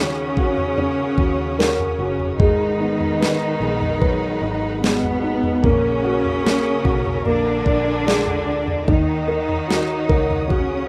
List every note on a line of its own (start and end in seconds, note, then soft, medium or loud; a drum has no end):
0.00 0.37 D#2 loud
0.00 2.36 C#3 medium
0.00 2.36 D#3 medium
0.00 2.66 D#3 medium
0.00 0.36 A#3 medium
0.00 0.76 C#4 medium
0.00 2.36 C#4 medium
0.00 0.37 F#4 medium
0.00 2.37 C#5 medium
0.00 2.36 F#5 medium
0.00 2.36 D#6 medium
0.37 1.14 F2 medium
0.37 0.77 A#3 medium
0.37 1.17 C#4 medium
0.37 1.60 F#4 medium
0.37 1.17 F#4 medium
0.37 kick medium
0.58 floor tom medium
0.78 1.58 A#3 medium
0.78 2.36 C#4 medium
0.78 floor tom medium
1.18 1.95 D#2 loud
1.18 1.59 C#4 medium
1.18 1.98 F#4 medium
1.18 kick medium
1.59 2.48 A#3 medium
1.59 2.48 C#4 medium
1.59 3.62 F#4 medium
1.59 2.37 A#4 medium
1.59 snare loud
1.80 floor tom medium
1.99 2.40 F#1 medium
1.99 2.39 F#4 medium
2.20 floor tom medium
2.39 3.57 G#1 loud
2.39 5.64 G#2 medium
2.39 4.79 D#3 medium
2.39 4.81 G#3 medium
2.39 4.79 D#4 medium
2.39 5.61 G#4 medium
2.39 7.22 F#5 medium
2.39 5.61 B5 medium
2.39 kick loud
2.39 floor tom loud
2.80 3.60 B3 medium
2.80 3.59 D#4 medium
3.00 floor tom medium
3.20 3.99 B4 medium
3.20 snare loud
3.60 4.38 A#1 medium
3.60 4.82 B3 medium
3.60 4.41 D#4 medium
3.60 4.42 D#4 medium
3.60 4.83 G#4 medium
3.82 floor tom medium
4.00 5.72 F#3 medium
4.00 5.59 B4 medium
4.00 kick loud
4.00 floor tom medium
4.41 5.59 G#1 loud
4.41 5.21 D#4 medium
4.41 4.83 D#4 medium
4.82 5.62 B2 medium
4.82 5.61 G#3 medium
4.82 5.72 B3 medium
4.82 5.62 B3 loud
4.82 5.72 D#4 medium
4.82 5.72 G#4 medium
4.82 snare loud
5.03 floor tom medium
5.22 5.62 D#4 medium
5.43 floor tom medium
5.63 6.81 A#1 loud
5.63 7.24 A#2 medium
5.63 7.23 C#3 medium
5.63 6.43 A#3 medium
5.63 7.23 C#4 loud
5.63 8.85 A#4 loud
5.63 7.24 D#6 loud
5.63 kick loud
5.63 floor tom loud
6.04 6.84 A#3 medium
6.04 6.83 F#4 medium
6.25 floor tom medium
6.44 7.23 A#3 medium
6.44 snare loud
6.84 7.23 B1 medium
6.84 8.06 A#3 medium
6.84 7.34 D#4 medium
6.84 7.24 F#4 medium
6.84 7.34 F#4 medium
6.84 kick medium
7.06 floor tom medium
7.25 7.64 A#1 loud
7.25 8.96 A#2 medium
7.25 8.85 D3 medium
7.25 8.84 A#3 medium
7.25 8.85 D4 loud
7.25 8.87 G#5 medium
7.25 8.86 D6 medium
7.25 floor tom medium
7.65 8.46 A#1 loud
7.65 8.05 D4 medium
7.65 8.45 D5 medium
7.65 kick medium
8.06 8.96 G#3 medium
8.06 8.96 D4 medium
8.06 8.96 F4 medium
8.06 8.85 G#4 medium
8.06 snare loud
8.27 floor tom medium
8.46 8.85 D2 medium
8.46 8.86 D5 medium
8.68 floor tom medium
8.88 10.05 D#2 loud
8.88 10.88 D#3 medium
8.88 10.47 D#3 medium
8.88 10.47 D#4 medium
8.88 10.88 C#5 medium
8.88 10.88 F#5 medium
8.88 10.88 D#6 loud
8.88 kick loud
8.88 floor tom loud
9.28 10.09 A#3 medium
9.28 10.07 A#4 medium
9.49 floor tom medium
9.68 10.47 F#4 medium
9.68 snare loud
10.09 10.87 C#2 medium
10.09 10.49 A#3 medium
10.09 10.88 C#4 medium
10.09 10.88 F#4 medium
10.09 10.87 A#4 medium
10.09 kick medium
10.30 floor tom medium
10.48 10.88 C#3 medium
10.48 10.88 A#3 medium
10.48 10.88 C#4 loud
10.48 10.88 F#4 medium
10.48 kick medium
10.48 floor tom medium